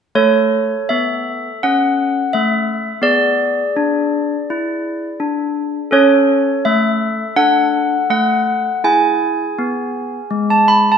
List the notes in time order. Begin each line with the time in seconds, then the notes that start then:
0.15 A3 A4 C#5
0.89 B3 E5
1.63 C#4 F#5
2.33 A3 E5
3.02 B3 G#4 D5
3.76 D4
4.50 E4
5.20 D4
5.91 C#4 A4 C#5
6.65 A3 E5
7.36 D4 A4 F#5
8.10 A3 F#5
8.84 E4 G#4 G#5
9.59 B3
10.31 G#3
10.50 A5
10.68 B5
10.92 A5